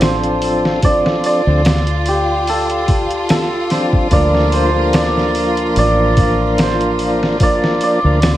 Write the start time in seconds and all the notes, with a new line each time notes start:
Already playing: A1 F3 C4 D4 F4 A4
0.01 C5, snare, open hi-hat
0.24 closed hi-hat
0.42 open hi-hat
0.65 snare
0.82 F3 C4 D4 A4 D5, kick, open hi-hat
1.06 snare
1.24 D5, open hi-hat
1.47 D2 F3 C4 D4 A4
1.65 snare, open hi-hat
1.87 closed hi-hat
2.06 G4, open hi-hat
2.47 A4, open hi-hat
2.70 closed hi-hat
2.88 kick, open hi-hat
3.11 closed hi-hat
3.29 A4, snare, open hi-hat
3.70 F3 C4 D4 A4, snare, open hi-hat
3.93 kick
4.11 D2 F3 A#3 D4 A#4 D5, kick, open hi-hat
4.35 snare
4.52 C5, open hi-hat
4.75 F3 A#3 D4
4.79 A#4
4.93 D5, snare, open hi-hat
5.17 snare
5.35 open hi-hat
5.57 closed hi-hat
5.76 A1 D5, open hi-hat
6.17 kick, open hi-hat
6.58 C5, snare, open hi-hat
6.81 closed hi-hat
6.99 open hi-hat
7.23 snare
7.40 F3 A#3 D4 A#4 D5, kick, open hi-hat
7.64 snare
7.81 D5, open hi-hat
8.04 D2 F3 A#3 D4 A#4
8.22 snare, open hi-hat